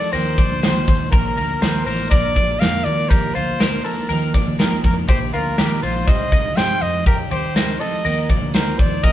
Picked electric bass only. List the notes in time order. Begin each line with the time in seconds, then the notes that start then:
0.14 D#2
0.51 D2
0.88 D#2
1.12 A#1
1.37 D2
1.62 D#2
1.87 A1
2.11 A#1
2.61 F2
2.86 D#2
3.36 D2
4.10 D#2
4.47 D#2
4.84 F2
5.09 A#1
5.34 D2
5.58 D#2
5.83 A#1
6.08 C2
6.57 G2
6.82 F2
7.31 D#2
8.05 D#2
8.42 D2
8.79 D#2
9.04 A#1